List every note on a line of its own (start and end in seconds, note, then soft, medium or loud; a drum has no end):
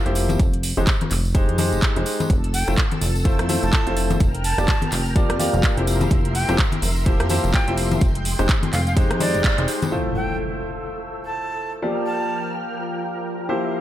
0.06 0.37 F1 medium
0.06 0.38 F3 medium
0.06 0.38 A#3 medium
0.06 0.38 E4 medium
0.06 0.38 G4 medium
0.06 0.38 C5 medium
0.06 closed hi-hat soft
0.15 open hi-hat medium
0.15 tambourine medium
0.29 closed hi-hat soft
0.29 tambourine medium
0.29 high conga medium
0.40 0.73 F1 loud
0.40 kick loud
0.40 closed hi-hat medium
0.54 closed hi-hat soft
0.63 open hi-hat loud
0.63 tambourine medium
0.77 0.85 F1 loud
0.77 0.87 G#3 medium
0.77 0.87 D#4 medium
0.77 0.87 G4 medium
0.77 0.87 C5 medium
0.77 tambourine soft
0.87 kick loud
0.87 clap loud
0.87 closed hi-hat medium
0.87 tambourine soft
1.01 closed hi-hat soft
1.01 high conga medium
1.11 1.50 F1 medium
1.11 clap soft
1.11 open hi-hat loud
1.11 tambourine medium
1.25 tambourine medium
1.35 1.55 G#3 medium
1.35 1.55 D#4 medium
1.35 1.55 G4 medium
1.35 1.55 C5 medium
1.35 kick loud
1.35 closed hi-hat medium
1.35 tambourine soft
1.49 1.74 F2 medium
1.49 closed hi-hat soft
1.58 1.93 G#3 medium
1.58 1.93 D#4 medium
1.58 1.93 G4 medium
1.58 1.93 C5 medium
1.58 open hi-hat loud
1.58 tambourine medium
1.58 high conga medium
1.72 1.81 F1 medium
1.72 closed hi-hat soft
1.72 tambourine soft
1.82 kick loud
1.82 clap loud
1.82 closed hi-hat medium
1.96 2.04 F1 medium
1.96 2.29 G#3 medium
1.96 2.29 D#4 medium
1.96 2.29 G4 medium
1.96 2.29 C5 medium
1.96 closed hi-hat soft
2.06 open hi-hat medium
2.06 tambourine medium
2.20 closed hi-hat soft
2.20 tambourine medium
2.20 high conga medium
2.30 2.64 F1 loud
2.30 4.19 A4 medium
2.30 4.19 E6 medium
2.30 kick loud
2.30 closed hi-hat medium
2.44 closed hi-hat soft
2.54 2.74 G5 medium
2.54 open hi-hat medium
2.54 tambourine medium
2.68 2.76 F1 loud
2.68 2.78 A3 medium
2.68 2.78 E4 medium
2.68 2.78 F4 medium
2.68 2.78 C5 medium
2.68 cross-stick medium
2.68 tambourine medium
2.78 kick loud
2.78 clap loud
2.78 closed hi-hat medium
2.92 closed hi-hat soft
2.92 high conga medium
3.01 3.41 F1 medium
3.01 open hi-hat medium
3.01 tambourine loud
3.15 tambourine medium
3.25 3.45 A3 medium
3.25 3.45 E4 medium
3.25 3.45 F4 medium
3.25 3.45 C5 loud
3.25 kick loud
3.25 closed hi-hat medium
3.25 tambourine soft
3.39 3.58 F2 medium
3.39 cross-stick medium
3.39 closed hi-hat medium
3.49 3.83 A3 medium
3.49 3.83 E4 medium
3.49 3.83 F4 medium
3.49 3.83 C5 loud
3.49 open hi-hat loud
3.49 tambourine medium
3.49 high conga medium
3.63 3.71 F1 medium
3.63 4.11 A5 medium
3.63 closed hi-hat soft
3.63 tambourine medium
3.73 kick loud
3.73 clap loud
3.73 closed hi-hat medium
3.87 4.18 F1 medium
3.87 4.19 A3 medium
3.87 4.19 E4 medium
3.87 4.19 F4 medium
3.87 4.19 C5 medium
3.87 closed hi-hat soft
3.96 open hi-hat medium
3.96 tambourine medium
4.10 closed hi-hat soft
4.10 tambourine soft
4.10 high conga medium
4.20 4.54 F1 medium
4.20 5.85 A#4 medium
4.20 5.85 G5 medium
4.20 5.85 F6 medium
4.20 kick loud
4.20 closed hi-hat medium
4.20 tambourine soft
4.35 closed hi-hat medium
4.44 4.92 A5 medium
4.44 open hi-hat loud
4.44 tambourine medium
4.58 4.66 F1 loud
4.58 4.68 F3 medium
4.58 4.68 A#3 medium
4.58 4.68 F4 medium
4.58 4.68 G4 medium
4.58 4.68 D5 medium
4.58 cross-stick medium
4.58 closed hi-hat soft
4.58 tambourine soft
4.68 kick loud
4.68 clap loud
4.68 closed hi-hat medium
4.82 closed hi-hat soft
4.82 high conga medium
4.92 5.31 F1 loud
4.92 clap soft
4.92 open hi-hat medium
4.92 tambourine medium
5.06 tambourine soft
5.16 5.36 F3 medium
5.16 5.36 A#3 medium
5.16 5.36 F4 medium
5.16 5.36 G4 medium
5.16 5.36 D5 loud
5.16 kick loud
5.16 closed hi-hat medium
5.16 tambourine soft
5.30 5.48 F2 medium
5.30 cross-stick medium
5.30 closed hi-hat medium
5.39 5.74 F3 medium
5.39 5.74 A#3 medium
5.39 5.74 F4 medium
5.39 5.74 G4 medium
5.39 5.74 D5 medium
5.39 open hi-hat loud
5.39 tambourine medium
5.39 high conga medium
5.53 5.62 F1 loud
5.53 closed hi-hat soft
5.53 tambourine medium
5.63 kick loud
5.63 clap loud
5.63 closed hi-hat medium
5.63 tambourine soft
5.77 6.08 F1 medium
5.77 6.45 F3 medium
5.77 6.45 A#3 medium
5.77 6.45 E4 medium
5.77 6.45 G4 medium
5.77 6.45 C5 medium
5.77 closed hi-hat medium
5.87 7.99 A#4 medium
5.87 7.99 E5 medium
5.87 9.88 C6 medium
5.87 open hi-hat medium
5.87 tambourine medium
6.01 closed hi-hat soft
6.01 tambourine medium
6.01 high conga loud
6.11 6.45 F1 loud
6.11 kick loud
6.11 closed hi-hat medium
6.11 tambourine soft
6.25 closed hi-hat medium
6.35 6.55 G5 medium
6.35 open hi-hat loud
6.35 tambourine medium
6.48 6.57 F1 loud
6.48 6.59 F3 medium
6.48 6.59 A#3 medium
6.48 6.59 E4 medium
6.48 6.59 G4 medium
6.48 6.59 C5 medium
6.48 cross-stick medium
6.48 closed hi-hat soft
6.48 tambourine soft
6.59 kick loud
6.59 clap loud
6.59 closed hi-hat medium
6.72 closed hi-hat medium
6.72 high conga medium
6.82 7.22 F1 medium
6.82 open hi-hat medium
6.82 tambourine medium
6.96 tambourine soft
7.06 7.26 F3 medium
7.06 7.26 A#3 medium
7.06 7.26 E4 medium
7.06 7.26 G4 medium
7.06 7.26 C5 loud
7.06 kick loud
7.06 closed hi-hat medium
7.20 7.39 F2 medium
7.20 cross-stick medium
7.20 closed hi-hat medium
7.29 7.64 F3 medium
7.29 7.64 A#3 medium
7.29 7.64 E4 medium
7.29 7.64 G4 medium
7.29 7.64 C5 medium
7.29 open hi-hat loud
7.29 tambourine medium
7.29 high conga medium
7.44 7.52 F1 loud
7.44 closed hi-hat soft
7.44 tambourine medium
7.54 7.74 G5 medium
7.54 kick loud
7.54 clap loud
7.54 closed hi-hat medium
7.54 tambourine soft
7.68 7.99 F1 medium
7.68 8.00 F3 medium
7.68 8.00 A#3 medium
7.68 8.00 E4 medium
7.68 8.00 G4 medium
7.68 8.00 C5 medium
7.68 closed hi-hat medium
7.77 open hi-hat medium
7.77 tambourine medium
7.91 closed hi-hat soft
7.91 tambourine soft
7.91 high conga medium
8.01 8.35 F1 loud
8.01 9.90 G#3 medium
8.01 9.90 G5 medium
8.01 kick loud
8.01 closed hi-hat medium
8.01 tambourine soft
8.15 closed hi-hat medium
8.25 open hi-hat loud
8.25 tambourine medium
8.39 8.47 F1 loud
8.39 8.49 G#3 medium
8.39 8.49 D#4 medium
8.39 8.49 G4 medium
8.39 8.49 C5 medium
8.39 cross-stick medium
8.39 closed hi-hat soft
8.39 tambourine medium
8.49 kick loud
8.49 clap loud
8.49 closed hi-hat medium
8.63 closed hi-hat medium
8.63 high conga loud
8.73 9.12 F1 medium
8.73 8.82 F5 medium
8.73 clap soft
8.73 open hi-hat medium
8.73 tambourine medium
8.87 8.93 F5 medium
8.87 closed hi-hat soft
8.87 tambourine soft
8.97 9.17 G#3 medium
8.97 9.17 D#4 medium
8.97 9.17 G4 medium
8.97 9.17 C5 loud
8.97 kick loud
8.97 closed hi-hat medium
8.97 tambourine soft
9.11 9.36 F2 medium
9.11 cross-stick medium
9.11 closed hi-hat medium
9.20 9.55 G#3 medium
9.20 9.55 D#4 medium
9.20 9.55 G4 medium
9.20 9.55 C5 loud
9.20 9.68 D5 loud
9.20 open hi-hat loud
9.20 tambourine medium
9.20 high conga medium
9.34 9.43 F1 medium
9.34 closed hi-hat soft
9.34 tambourine soft
9.44 kick loud
9.44 clap loud
9.44 closed hi-hat medium
9.58 9.66 F1 loud
9.58 9.91 G#3 medium
9.58 9.91 D#4 medium
9.58 9.91 G4 medium
9.58 9.90 C5 medium
9.58 closed hi-hat medium
9.68 open hi-hat medium
9.68 tambourine medium
9.82 closed hi-hat soft
9.82 tambourine medium
9.82 high conga loud
9.92 11.80 A3 medium
9.92 11.80 E4 medium
9.92 11.80 F4 medium
9.92 11.80 A4 medium
9.92 11.80 C5 medium
9.92 11.80 E6 medium
9.92 impact medium
10.16 10.36 G5 medium
11.25 11.73 A5 medium
11.82 13.81 F3 medium
11.82 13.47 F3 medium
11.82 13.47 A#3 medium
11.82 13.47 F4 medium
11.82 13.47 G4 medium
11.82 13.81 A#4 medium
11.82 13.47 D5 medium
11.82 13.47 G5 medium
11.82 13.47 F6 medium
12.06 12.54 A5 medium
13.49 13.81 F3 medium
13.49 13.81 A#3 medium
13.49 13.81 E4 medium
13.49 13.81 G4 medium
13.49 13.81 C5 medium
13.49 13.81 E5 medium
13.49 13.81 C6 medium